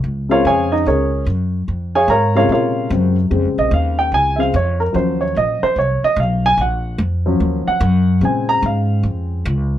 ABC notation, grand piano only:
X:1
M:4/4
L:1/8
Q:"Swing" 1/4=147
K:Bbm
V:1 name="Grand piano"
z [FBdf] [Adfa] [Ee] [DABd]2 z2 | z [Adfa] [Bdfb] [FBdf] [FBdf]2 z2 | z e f =g a [=ef] d B | c d e c d e f a |
g2 z3 g3 | a b f2 z4 |]
V:2 name="Grand piano" clef=bass
z [D,A,C]3 z4 | z3 [C,D,A,]3 [D,A,C] z | [D,A,C]4- [D,A,C] [D,A,C] z2 | [F,G,D]8 |
z3 [F,G,D]3 z2 | [D,A,C]8 |]